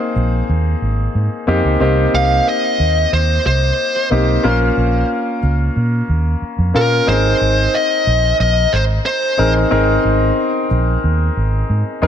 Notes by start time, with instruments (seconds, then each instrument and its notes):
Already playing: grand piano A#3 C4 D#4 G#4
0.16 fingered electric bass A#1
0.49 fingered electric bass D#2
0.82 fingered electric bass G#1
1.15 fingered electric bass G#2
1.47 fingered electric bass F2, grand piano A#3 C4 D#4 G4
1.64 fingered electric bass C#2
1.80 fingered electric bass C2, grand piano A#3 C4 D#4 G4
2.14 fingered electric bass C2, lead electric guitar F5
2.48 lead electric guitar D#5
2.79 fingered electric bass D#2
3.13 fingered electric bass D#2, lead electric guitar C5
3.45 fingered electric bass C2, lead electric guitar C5
4.10 fingered electric bass B1, grand piano A#3 C4 D#4 G4
4.43 fingered electric bass A#1, grand piano A#3 C#4 F4 A#4
4.77 fingered electric bass A#1
5.43 fingered electric bass C#2
5.76 fingered electric bass A#2
6.09 fingered electric bass D#2
6.42 muted fingered electric bass stroke
6.58 fingered electric bass F2
6.74 fingered electric bass A#2, grand piano A#3 C#4 F4 A#4, lead electric guitar A#4
7.07 fingered electric bass G#1, grand piano C4 D#4 G#4 A#4, lead electric guitar C5
7.41 fingered electric bass G#1
7.75 lead electric guitar D#5
8.07 fingered electric bass A#1
8.40 fingered electric bass A#1, lead electric guitar D#5
8.73 fingered electric bass G#1, lead electric guitar C5
9.06 lead electric guitar C5
9.38 fingered electric bass A1, grand piano C4 D#4 G#4 A#4
9.71 fingered electric bass G#1, grand piano C4 D#4 G#4 A#4
10.05 fingered electric bass G#1
10.71 fingered electric bass A#1
11.04 fingered electric bass D#2
11.37 fingered electric bass G#1
11.69 fingered electric bass G#2
12.02 fingered electric bass F2, grand piano C4 D#4 G#4 A#4